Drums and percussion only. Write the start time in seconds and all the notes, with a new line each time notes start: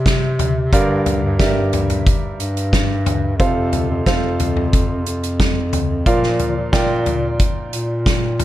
0.06 kick, snare, closed hi-hat
0.39 closed hi-hat, floor tom
0.73 kick, closed hi-hat
1.06 closed hi-hat, floor tom
1.40 kick, snare, closed hi-hat
1.73 closed hi-hat, floor tom
1.90 closed hi-hat, floor tom
2.07 kick, closed hi-hat
2.40 closed hi-hat
2.57 closed hi-hat
2.73 kick, snare, closed hi-hat
3.06 closed hi-hat, floor tom
3.40 kick, closed hi-hat
3.73 closed hi-hat, floor tom
4.06 kick, snare, closed hi-hat
4.40 closed hi-hat, floor tom
4.57 floor tom
4.73 kick, closed hi-hat
5.06 closed hi-hat
5.23 closed hi-hat
5.40 kick, snare, closed hi-hat
5.73 closed hi-hat, floor tom
6.06 kick, closed hi-hat
6.23 snare
6.39 closed hi-hat, floor tom
6.73 kick, snare, closed hi-hat
7.06 closed hi-hat, floor tom
7.40 kick, closed hi-hat
7.73 closed hi-hat
8.06 kick, snare, closed hi-hat
8.40 closed hi-hat, floor tom